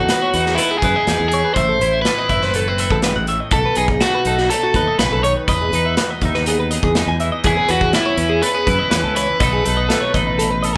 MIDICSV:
0, 0, Header, 1, 6, 480
1, 0, Start_track
1, 0, Tempo, 490597
1, 1526, Time_signature, 4, 2, 24, 8
1, 10540, End_track
2, 0, Start_track
2, 0, Title_t, "Clean electric guitar"
2, 0, Program_c, 0, 27
2, 98, Note_on_c, 0, 71, 71
2, 212, Note_off_c, 0, 71, 0
2, 216, Note_on_c, 0, 73, 65
2, 336, Note_off_c, 0, 73, 0
2, 336, Note_on_c, 0, 71, 67
2, 452, Note_off_c, 0, 71, 0
2, 452, Note_on_c, 0, 68, 66
2, 568, Note_off_c, 0, 68, 0
2, 572, Note_on_c, 0, 71, 78
2, 694, Note_off_c, 0, 71, 0
2, 694, Note_on_c, 0, 68, 65
2, 810, Note_off_c, 0, 68, 0
2, 822, Note_on_c, 0, 71, 68
2, 939, Note_off_c, 0, 71, 0
2, 939, Note_on_c, 0, 75, 64
2, 1069, Note_off_c, 0, 75, 0
2, 1069, Note_on_c, 0, 71, 76
2, 1188, Note_off_c, 0, 71, 0
2, 1188, Note_on_c, 0, 68, 69
2, 1297, Note_off_c, 0, 68, 0
2, 1308, Note_on_c, 0, 73, 67
2, 1411, Note_off_c, 0, 73, 0
2, 1415, Note_on_c, 0, 71, 65
2, 1531, Note_off_c, 0, 71, 0
2, 1538, Note_on_c, 0, 76, 81
2, 1652, Note_off_c, 0, 76, 0
2, 1652, Note_on_c, 0, 69, 67
2, 1769, Note_off_c, 0, 69, 0
2, 1776, Note_on_c, 0, 72, 70
2, 1891, Note_off_c, 0, 72, 0
2, 1891, Note_on_c, 0, 76, 65
2, 2009, Note_off_c, 0, 76, 0
2, 2018, Note_on_c, 0, 71, 78
2, 2132, Note_off_c, 0, 71, 0
2, 2133, Note_on_c, 0, 75, 63
2, 2250, Note_off_c, 0, 75, 0
2, 2254, Note_on_c, 0, 76, 70
2, 2370, Note_off_c, 0, 76, 0
2, 2375, Note_on_c, 0, 72, 65
2, 2491, Note_off_c, 0, 72, 0
2, 2503, Note_on_c, 0, 69, 78
2, 2620, Note_off_c, 0, 69, 0
2, 2620, Note_on_c, 0, 72, 66
2, 2727, Note_on_c, 0, 76, 66
2, 2734, Note_off_c, 0, 72, 0
2, 2847, Note_off_c, 0, 76, 0
2, 2854, Note_on_c, 0, 69, 64
2, 2967, Note_off_c, 0, 69, 0
2, 2971, Note_on_c, 0, 71, 73
2, 3089, Note_off_c, 0, 71, 0
2, 3090, Note_on_c, 0, 78, 65
2, 3208, Note_off_c, 0, 78, 0
2, 3213, Note_on_c, 0, 76, 73
2, 3330, Note_off_c, 0, 76, 0
2, 3330, Note_on_c, 0, 75, 66
2, 3449, Note_off_c, 0, 75, 0
2, 3456, Note_on_c, 0, 69, 83
2, 3572, Note_off_c, 0, 69, 0
2, 3577, Note_on_c, 0, 71, 63
2, 3692, Note_off_c, 0, 71, 0
2, 3702, Note_on_c, 0, 71, 67
2, 3817, Note_off_c, 0, 71, 0
2, 3817, Note_on_c, 0, 68, 65
2, 3938, Note_off_c, 0, 68, 0
2, 3938, Note_on_c, 0, 69, 80
2, 4053, Note_off_c, 0, 69, 0
2, 4057, Note_on_c, 0, 71, 65
2, 4172, Note_off_c, 0, 71, 0
2, 4179, Note_on_c, 0, 69, 67
2, 4293, Note_off_c, 0, 69, 0
2, 4293, Note_on_c, 0, 66, 60
2, 4417, Note_off_c, 0, 66, 0
2, 4417, Note_on_c, 0, 69, 78
2, 4530, Note_off_c, 0, 69, 0
2, 4534, Note_on_c, 0, 66, 65
2, 4651, Note_off_c, 0, 66, 0
2, 4656, Note_on_c, 0, 71, 70
2, 4770, Note_off_c, 0, 71, 0
2, 4770, Note_on_c, 0, 75, 66
2, 4894, Note_off_c, 0, 75, 0
2, 4894, Note_on_c, 0, 71, 77
2, 5011, Note_off_c, 0, 71, 0
2, 5015, Note_on_c, 0, 69, 64
2, 5129, Note_on_c, 0, 73, 77
2, 5132, Note_off_c, 0, 69, 0
2, 5253, Note_off_c, 0, 73, 0
2, 5253, Note_on_c, 0, 71, 64
2, 5370, Note_off_c, 0, 71, 0
2, 5374, Note_on_c, 0, 75, 77
2, 5491, Note_off_c, 0, 75, 0
2, 5493, Note_on_c, 0, 68, 64
2, 5609, Note_off_c, 0, 68, 0
2, 5613, Note_on_c, 0, 71, 70
2, 5728, Note_on_c, 0, 76, 62
2, 5730, Note_off_c, 0, 71, 0
2, 5841, Note_off_c, 0, 76, 0
2, 5845, Note_on_c, 0, 71, 76
2, 5974, Note_off_c, 0, 71, 0
2, 5974, Note_on_c, 0, 75, 69
2, 6095, Note_off_c, 0, 75, 0
2, 6095, Note_on_c, 0, 76, 71
2, 6212, Note_off_c, 0, 76, 0
2, 6213, Note_on_c, 0, 71, 65
2, 6330, Note_off_c, 0, 71, 0
2, 6337, Note_on_c, 0, 68, 75
2, 6451, Note_off_c, 0, 68, 0
2, 6455, Note_on_c, 0, 71, 74
2, 6563, Note_on_c, 0, 75, 68
2, 6571, Note_off_c, 0, 71, 0
2, 6686, Note_off_c, 0, 75, 0
2, 6689, Note_on_c, 0, 68, 70
2, 6810, Note_off_c, 0, 68, 0
2, 6810, Note_on_c, 0, 71, 75
2, 6929, Note_off_c, 0, 71, 0
2, 6931, Note_on_c, 0, 80, 67
2, 7044, Note_off_c, 0, 80, 0
2, 7048, Note_on_c, 0, 76, 71
2, 7159, Note_off_c, 0, 76, 0
2, 7163, Note_on_c, 0, 75, 72
2, 7283, Note_on_c, 0, 68, 85
2, 7286, Note_off_c, 0, 75, 0
2, 7406, Note_off_c, 0, 68, 0
2, 7406, Note_on_c, 0, 71, 63
2, 7508, Note_off_c, 0, 71, 0
2, 7519, Note_on_c, 0, 71, 74
2, 7647, Note_off_c, 0, 71, 0
2, 7647, Note_on_c, 0, 68, 69
2, 7763, Note_off_c, 0, 68, 0
2, 7763, Note_on_c, 0, 71, 83
2, 7885, Note_on_c, 0, 73, 73
2, 7886, Note_off_c, 0, 71, 0
2, 8001, Note_off_c, 0, 73, 0
2, 8001, Note_on_c, 0, 71, 74
2, 8115, Note_on_c, 0, 68, 72
2, 8125, Note_off_c, 0, 71, 0
2, 8239, Note_on_c, 0, 71, 82
2, 8242, Note_off_c, 0, 68, 0
2, 8358, Note_on_c, 0, 68, 72
2, 8364, Note_off_c, 0, 71, 0
2, 8479, Note_on_c, 0, 71, 72
2, 8483, Note_off_c, 0, 68, 0
2, 8598, Note_off_c, 0, 71, 0
2, 8598, Note_on_c, 0, 75, 70
2, 8715, Note_off_c, 0, 75, 0
2, 8719, Note_on_c, 0, 71, 84
2, 8836, Note_off_c, 0, 71, 0
2, 8840, Note_on_c, 0, 69, 68
2, 8955, Note_off_c, 0, 69, 0
2, 8955, Note_on_c, 0, 73, 79
2, 9084, Note_off_c, 0, 73, 0
2, 9084, Note_on_c, 0, 71, 69
2, 9194, Note_off_c, 0, 71, 0
2, 9198, Note_on_c, 0, 75, 86
2, 9323, Note_off_c, 0, 75, 0
2, 9323, Note_on_c, 0, 68, 72
2, 9435, Note_off_c, 0, 68, 0
2, 9435, Note_on_c, 0, 69, 72
2, 9559, Note_on_c, 0, 75, 64
2, 9562, Note_off_c, 0, 69, 0
2, 9673, Note_on_c, 0, 69, 82
2, 9683, Note_off_c, 0, 75, 0
2, 9792, Note_on_c, 0, 73, 73
2, 9801, Note_off_c, 0, 69, 0
2, 9920, Note_off_c, 0, 73, 0
2, 9924, Note_on_c, 0, 75, 74
2, 10048, Note_off_c, 0, 75, 0
2, 10048, Note_on_c, 0, 71, 66
2, 10163, Note_on_c, 0, 69, 80
2, 10168, Note_off_c, 0, 71, 0
2, 10280, Note_off_c, 0, 69, 0
2, 10280, Note_on_c, 0, 71, 73
2, 10397, Note_on_c, 0, 75, 77
2, 10404, Note_off_c, 0, 71, 0
2, 10522, Note_off_c, 0, 75, 0
2, 10540, End_track
3, 0, Start_track
3, 0, Title_t, "Overdriven electric guitar"
3, 0, Program_c, 1, 29
3, 0, Note_on_c, 1, 66, 83
3, 538, Note_on_c, 1, 64, 73
3, 575, Note_off_c, 1, 66, 0
3, 764, Note_off_c, 1, 64, 0
3, 768, Note_on_c, 1, 68, 76
3, 1247, Note_off_c, 1, 68, 0
3, 1258, Note_on_c, 1, 68, 87
3, 1505, Note_off_c, 1, 68, 0
3, 1509, Note_on_c, 1, 72, 94
3, 1970, Note_off_c, 1, 72, 0
3, 1974, Note_on_c, 1, 71, 83
3, 2912, Note_off_c, 1, 71, 0
3, 3449, Note_on_c, 1, 69, 83
3, 3691, Note_off_c, 1, 69, 0
3, 3695, Note_on_c, 1, 68, 72
3, 3758, Note_off_c, 1, 68, 0
3, 3934, Note_on_c, 1, 66, 82
3, 4377, Note_off_c, 1, 66, 0
3, 4401, Note_on_c, 1, 69, 78
3, 4851, Note_off_c, 1, 69, 0
3, 4886, Note_on_c, 1, 71, 85
3, 5110, Note_off_c, 1, 71, 0
3, 5124, Note_on_c, 1, 73, 91
3, 5189, Note_off_c, 1, 73, 0
3, 5370, Note_on_c, 1, 71, 83
3, 5816, Note_off_c, 1, 71, 0
3, 7310, Note_on_c, 1, 68, 88
3, 7523, Note_off_c, 1, 68, 0
3, 7538, Note_on_c, 1, 66, 83
3, 7773, Note_off_c, 1, 66, 0
3, 7777, Note_on_c, 1, 64, 94
3, 8219, Note_off_c, 1, 64, 0
3, 8245, Note_on_c, 1, 71, 98
3, 8961, Note_off_c, 1, 71, 0
3, 8972, Note_on_c, 1, 71, 97
3, 9194, Note_off_c, 1, 71, 0
3, 9214, Note_on_c, 1, 71, 89
3, 10540, Note_off_c, 1, 71, 0
3, 10540, End_track
4, 0, Start_track
4, 0, Title_t, "Clean electric guitar"
4, 0, Program_c, 2, 27
4, 0, Note_on_c, 2, 40, 63
4, 0, Note_on_c, 2, 52, 54
4, 0, Note_on_c, 2, 59, 60
4, 0, Note_on_c, 2, 63, 55
4, 106, Note_off_c, 2, 59, 0
4, 110, Note_on_c, 2, 59, 52
4, 335, Note_off_c, 2, 63, 0
4, 349, Note_on_c, 2, 63, 57
4, 573, Note_off_c, 2, 59, 0
4, 576, Note_on_c, 2, 57, 64
4, 691, Note_off_c, 2, 57, 0
4, 691, Note_on_c, 2, 59, 47
4, 829, Note_on_c, 2, 64, 58
4, 1058, Note_off_c, 2, 63, 0
4, 1069, Note_on_c, 2, 63, 52
4, 1282, Note_off_c, 2, 52, 0
4, 1301, Note_on_c, 2, 52, 53
4, 1509, Note_off_c, 2, 63, 0
4, 1524, Note_off_c, 2, 40, 0
4, 1529, Note_off_c, 2, 59, 0
4, 1538, Note_on_c, 2, 45, 64
4, 1769, Note_off_c, 2, 64, 0
4, 1780, Note_on_c, 2, 64, 57
4, 2018, Note_on_c, 2, 57, 53
4, 2137, Note_off_c, 2, 57, 0
4, 2137, Note_on_c, 2, 60, 45
4, 2237, Note_off_c, 2, 64, 0
4, 2249, Note_on_c, 2, 64, 56
4, 2492, Note_off_c, 2, 60, 0
4, 2497, Note_on_c, 2, 57, 60
4, 2620, Note_off_c, 2, 57, 0
4, 2620, Note_on_c, 2, 60, 46
4, 2733, Note_on_c, 2, 69, 56
4, 2964, Note_off_c, 2, 45, 0
4, 2968, Note_on_c, 2, 44, 52
4, 3208, Note_off_c, 2, 44, 0
4, 3212, Note_on_c, 2, 45, 54
4, 3420, Note_off_c, 2, 64, 0
4, 3421, Note_off_c, 2, 69, 0
4, 3445, Note_on_c, 2, 47, 64
4, 3450, Note_off_c, 2, 45, 0
4, 3454, Note_off_c, 2, 60, 0
4, 3455, Note_off_c, 2, 52, 0
4, 3693, Note_on_c, 2, 63, 57
4, 3940, Note_on_c, 2, 57, 55
4, 4169, Note_off_c, 2, 63, 0
4, 4173, Note_on_c, 2, 63, 57
4, 4405, Note_off_c, 2, 57, 0
4, 4417, Note_on_c, 2, 57, 59
4, 4655, Note_off_c, 2, 63, 0
4, 4659, Note_on_c, 2, 63, 48
4, 4873, Note_off_c, 2, 47, 0
4, 4877, Note_on_c, 2, 49, 57
4, 5108, Note_off_c, 2, 49, 0
4, 5112, Note_on_c, 2, 51, 53
4, 5360, Note_off_c, 2, 51, 0
4, 5366, Note_on_c, 2, 40, 68
4, 5372, Note_off_c, 2, 57, 0
4, 5395, Note_off_c, 2, 63, 0
4, 5625, Note_on_c, 2, 63, 54
4, 5857, Note_on_c, 2, 59, 58
4, 6115, Note_off_c, 2, 63, 0
4, 6119, Note_on_c, 2, 63, 62
4, 6343, Note_off_c, 2, 59, 0
4, 6347, Note_on_c, 2, 59, 61
4, 6587, Note_on_c, 2, 68, 56
4, 6833, Note_off_c, 2, 63, 0
4, 6837, Note_on_c, 2, 63, 54
4, 7056, Note_on_c, 2, 52, 57
4, 7269, Note_off_c, 2, 68, 0
4, 7284, Note_off_c, 2, 40, 0
4, 7292, Note_off_c, 2, 52, 0
4, 7295, Note_on_c, 2, 40, 72
4, 7303, Note_on_c, 2, 52, 57
4, 7306, Note_off_c, 2, 59, 0
4, 7310, Note_on_c, 2, 59, 60
4, 7312, Note_off_c, 2, 63, 0
4, 7316, Note_on_c, 2, 61, 56
4, 7323, Note_on_c, 2, 64, 65
4, 7515, Note_off_c, 2, 61, 0
4, 7527, Note_on_c, 2, 61, 57
4, 7764, Note_off_c, 2, 59, 0
4, 7768, Note_on_c, 2, 57, 59
4, 7879, Note_off_c, 2, 57, 0
4, 7879, Note_on_c, 2, 59, 48
4, 7990, Note_off_c, 2, 61, 0
4, 8002, Note_on_c, 2, 61, 59
4, 8232, Note_off_c, 2, 59, 0
4, 8236, Note_on_c, 2, 57, 69
4, 8362, Note_off_c, 2, 57, 0
4, 8362, Note_on_c, 2, 59, 52
4, 8471, Note_off_c, 2, 64, 0
4, 8482, Note_on_c, 2, 64, 63
4, 8704, Note_off_c, 2, 61, 0
4, 8716, Note_on_c, 2, 61, 53
4, 8945, Note_off_c, 2, 52, 0
4, 8957, Note_on_c, 2, 52, 58
4, 9173, Note_off_c, 2, 61, 0
4, 9200, Note_on_c, 2, 47, 75
4, 9203, Note_off_c, 2, 52, 0
4, 9205, Note_off_c, 2, 59, 0
4, 9205, Note_off_c, 2, 64, 0
4, 9208, Note_on_c, 2, 54, 51
4, 9210, Note_on_c, 2, 57, 64
4, 9212, Note_off_c, 2, 40, 0
4, 9217, Note_on_c, 2, 63, 59
4, 9226, Note_on_c, 2, 69, 62
4, 9435, Note_off_c, 2, 63, 0
4, 9447, Note_on_c, 2, 63, 61
4, 9677, Note_off_c, 2, 57, 0
4, 9689, Note_on_c, 2, 57, 60
4, 9927, Note_off_c, 2, 63, 0
4, 9938, Note_on_c, 2, 63, 59
4, 10168, Note_off_c, 2, 57, 0
4, 10404, Note_off_c, 2, 69, 0
4, 10416, Note_on_c, 2, 69, 67
4, 10540, Note_off_c, 2, 47, 0
4, 10540, Note_off_c, 2, 54, 0
4, 10540, Note_off_c, 2, 63, 0
4, 10540, Note_off_c, 2, 69, 0
4, 10540, End_track
5, 0, Start_track
5, 0, Title_t, "Fingered electric bass"
5, 0, Program_c, 3, 33
5, 330, Note_on_c, 3, 40, 80
5, 547, Note_off_c, 3, 40, 0
5, 807, Note_on_c, 3, 42, 72
5, 916, Note_off_c, 3, 42, 0
5, 1049, Note_on_c, 3, 40, 77
5, 1157, Note_off_c, 3, 40, 0
5, 1172, Note_on_c, 3, 40, 75
5, 1388, Note_off_c, 3, 40, 0
5, 1532, Note_on_c, 3, 33, 83
5, 1749, Note_off_c, 3, 33, 0
5, 1775, Note_on_c, 3, 33, 94
5, 1990, Note_off_c, 3, 33, 0
5, 2250, Note_on_c, 3, 30, 87
5, 2810, Note_off_c, 3, 30, 0
5, 2842, Note_on_c, 3, 33, 71
5, 3063, Note_off_c, 3, 33, 0
5, 3090, Note_on_c, 3, 33, 81
5, 3308, Note_off_c, 3, 33, 0
5, 3438, Note_on_c, 3, 35, 91
5, 3552, Note_off_c, 3, 35, 0
5, 3686, Note_on_c, 3, 35, 86
5, 3906, Note_off_c, 3, 35, 0
5, 4162, Note_on_c, 3, 35, 75
5, 4384, Note_off_c, 3, 35, 0
5, 4640, Note_on_c, 3, 39, 77
5, 4753, Note_off_c, 3, 39, 0
5, 4878, Note_on_c, 3, 35, 81
5, 4992, Note_off_c, 3, 35, 0
5, 4997, Note_on_c, 3, 35, 81
5, 5221, Note_off_c, 3, 35, 0
5, 5365, Note_on_c, 3, 40, 88
5, 5585, Note_off_c, 3, 40, 0
5, 5597, Note_on_c, 3, 40, 92
5, 5821, Note_off_c, 3, 40, 0
5, 6086, Note_on_c, 3, 39, 93
5, 6648, Note_off_c, 3, 39, 0
5, 6680, Note_on_c, 3, 40, 71
5, 6903, Note_off_c, 3, 40, 0
5, 6912, Note_on_c, 3, 40, 86
5, 7139, Note_off_c, 3, 40, 0
5, 7285, Note_on_c, 3, 40, 93
5, 7396, Note_off_c, 3, 40, 0
5, 7523, Note_on_c, 3, 40, 92
5, 7745, Note_off_c, 3, 40, 0
5, 7997, Note_on_c, 3, 40, 84
5, 8221, Note_off_c, 3, 40, 0
5, 8484, Note_on_c, 3, 42, 79
5, 8596, Note_off_c, 3, 42, 0
5, 8721, Note_on_c, 3, 40, 83
5, 8834, Note_off_c, 3, 40, 0
5, 8842, Note_on_c, 3, 37, 80
5, 9064, Note_off_c, 3, 37, 0
5, 9201, Note_on_c, 3, 35, 87
5, 9424, Note_off_c, 3, 35, 0
5, 9451, Note_on_c, 3, 35, 100
5, 9669, Note_off_c, 3, 35, 0
5, 9927, Note_on_c, 3, 33, 90
5, 10488, Note_off_c, 3, 33, 0
5, 10540, End_track
6, 0, Start_track
6, 0, Title_t, "Drums"
6, 84, Note_on_c, 9, 42, 78
6, 86, Note_on_c, 9, 38, 96
6, 181, Note_off_c, 9, 42, 0
6, 184, Note_off_c, 9, 38, 0
6, 328, Note_on_c, 9, 42, 59
6, 426, Note_off_c, 9, 42, 0
6, 453, Note_on_c, 9, 38, 26
6, 551, Note_off_c, 9, 38, 0
6, 565, Note_on_c, 9, 42, 78
6, 663, Note_off_c, 9, 42, 0
6, 805, Note_on_c, 9, 36, 77
6, 806, Note_on_c, 9, 42, 59
6, 903, Note_off_c, 9, 36, 0
6, 904, Note_off_c, 9, 42, 0
6, 1048, Note_on_c, 9, 42, 76
6, 1051, Note_on_c, 9, 38, 96
6, 1146, Note_off_c, 9, 42, 0
6, 1149, Note_off_c, 9, 38, 0
6, 1287, Note_on_c, 9, 42, 56
6, 1385, Note_off_c, 9, 42, 0
6, 1526, Note_on_c, 9, 42, 72
6, 1527, Note_on_c, 9, 36, 95
6, 1624, Note_off_c, 9, 42, 0
6, 1625, Note_off_c, 9, 36, 0
6, 1772, Note_on_c, 9, 42, 54
6, 1870, Note_off_c, 9, 42, 0
6, 2007, Note_on_c, 9, 42, 73
6, 2010, Note_on_c, 9, 38, 102
6, 2105, Note_off_c, 9, 42, 0
6, 2107, Note_off_c, 9, 38, 0
6, 2245, Note_on_c, 9, 36, 68
6, 2245, Note_on_c, 9, 42, 52
6, 2343, Note_off_c, 9, 36, 0
6, 2343, Note_off_c, 9, 42, 0
6, 2366, Note_on_c, 9, 38, 27
6, 2463, Note_off_c, 9, 38, 0
6, 2482, Note_on_c, 9, 42, 72
6, 2580, Note_off_c, 9, 42, 0
6, 2723, Note_on_c, 9, 42, 53
6, 2820, Note_off_c, 9, 42, 0
6, 2842, Note_on_c, 9, 36, 79
6, 2940, Note_off_c, 9, 36, 0
6, 2958, Note_on_c, 9, 42, 72
6, 2961, Note_on_c, 9, 38, 94
6, 3056, Note_off_c, 9, 42, 0
6, 3059, Note_off_c, 9, 38, 0
6, 3202, Note_on_c, 9, 42, 51
6, 3299, Note_off_c, 9, 42, 0
6, 3433, Note_on_c, 9, 42, 74
6, 3438, Note_on_c, 9, 36, 98
6, 3531, Note_off_c, 9, 42, 0
6, 3536, Note_off_c, 9, 36, 0
6, 3673, Note_on_c, 9, 42, 57
6, 3770, Note_off_c, 9, 42, 0
6, 3797, Note_on_c, 9, 36, 82
6, 3895, Note_off_c, 9, 36, 0
6, 3918, Note_on_c, 9, 42, 78
6, 3921, Note_on_c, 9, 38, 105
6, 4015, Note_off_c, 9, 42, 0
6, 4018, Note_off_c, 9, 38, 0
6, 4157, Note_on_c, 9, 42, 56
6, 4255, Note_off_c, 9, 42, 0
6, 4283, Note_on_c, 9, 38, 26
6, 4381, Note_off_c, 9, 38, 0
6, 4407, Note_on_c, 9, 42, 86
6, 4505, Note_off_c, 9, 42, 0
6, 4639, Note_on_c, 9, 36, 75
6, 4643, Note_on_c, 9, 42, 58
6, 4737, Note_off_c, 9, 36, 0
6, 4741, Note_off_c, 9, 42, 0
6, 4882, Note_on_c, 9, 42, 82
6, 4885, Note_on_c, 9, 38, 104
6, 4980, Note_off_c, 9, 42, 0
6, 4983, Note_off_c, 9, 38, 0
6, 5127, Note_on_c, 9, 42, 59
6, 5225, Note_off_c, 9, 42, 0
6, 5361, Note_on_c, 9, 36, 95
6, 5361, Note_on_c, 9, 42, 79
6, 5459, Note_off_c, 9, 36, 0
6, 5459, Note_off_c, 9, 42, 0
6, 5606, Note_on_c, 9, 42, 58
6, 5704, Note_off_c, 9, 42, 0
6, 5842, Note_on_c, 9, 42, 82
6, 5845, Note_on_c, 9, 38, 105
6, 5939, Note_off_c, 9, 42, 0
6, 5942, Note_off_c, 9, 38, 0
6, 6080, Note_on_c, 9, 42, 51
6, 6083, Note_on_c, 9, 36, 70
6, 6178, Note_off_c, 9, 42, 0
6, 6180, Note_off_c, 9, 36, 0
6, 6205, Note_on_c, 9, 38, 28
6, 6303, Note_off_c, 9, 38, 0
6, 6322, Note_on_c, 9, 42, 81
6, 6420, Note_off_c, 9, 42, 0
6, 6563, Note_on_c, 9, 42, 54
6, 6661, Note_off_c, 9, 42, 0
6, 6682, Note_on_c, 9, 36, 81
6, 6780, Note_off_c, 9, 36, 0
6, 6801, Note_on_c, 9, 42, 72
6, 6804, Note_on_c, 9, 38, 101
6, 6899, Note_off_c, 9, 42, 0
6, 6902, Note_off_c, 9, 38, 0
6, 7044, Note_on_c, 9, 42, 55
6, 7142, Note_off_c, 9, 42, 0
6, 7277, Note_on_c, 9, 42, 73
6, 7283, Note_on_c, 9, 36, 101
6, 7375, Note_off_c, 9, 42, 0
6, 7380, Note_off_c, 9, 36, 0
6, 7520, Note_on_c, 9, 42, 55
6, 7618, Note_off_c, 9, 42, 0
6, 7642, Note_on_c, 9, 36, 80
6, 7740, Note_off_c, 9, 36, 0
6, 7759, Note_on_c, 9, 42, 78
6, 7762, Note_on_c, 9, 38, 110
6, 7857, Note_off_c, 9, 42, 0
6, 7860, Note_off_c, 9, 38, 0
6, 7999, Note_on_c, 9, 42, 54
6, 8096, Note_off_c, 9, 42, 0
6, 8243, Note_on_c, 9, 42, 87
6, 8341, Note_off_c, 9, 42, 0
6, 8482, Note_on_c, 9, 36, 83
6, 8485, Note_on_c, 9, 42, 59
6, 8580, Note_off_c, 9, 36, 0
6, 8583, Note_off_c, 9, 42, 0
6, 8719, Note_on_c, 9, 42, 84
6, 8722, Note_on_c, 9, 38, 99
6, 8817, Note_off_c, 9, 42, 0
6, 8820, Note_off_c, 9, 38, 0
6, 8963, Note_on_c, 9, 42, 63
6, 9061, Note_off_c, 9, 42, 0
6, 9199, Note_on_c, 9, 42, 82
6, 9201, Note_on_c, 9, 36, 110
6, 9297, Note_off_c, 9, 42, 0
6, 9299, Note_off_c, 9, 36, 0
6, 9446, Note_on_c, 9, 42, 66
6, 9544, Note_off_c, 9, 42, 0
6, 9685, Note_on_c, 9, 42, 83
6, 9688, Note_on_c, 9, 38, 98
6, 9783, Note_off_c, 9, 42, 0
6, 9786, Note_off_c, 9, 38, 0
6, 9923, Note_on_c, 9, 36, 76
6, 9924, Note_on_c, 9, 42, 54
6, 10021, Note_off_c, 9, 36, 0
6, 10022, Note_off_c, 9, 42, 0
6, 10169, Note_on_c, 9, 42, 84
6, 10266, Note_off_c, 9, 42, 0
6, 10406, Note_on_c, 9, 42, 55
6, 10504, Note_off_c, 9, 42, 0
6, 10540, End_track
0, 0, End_of_file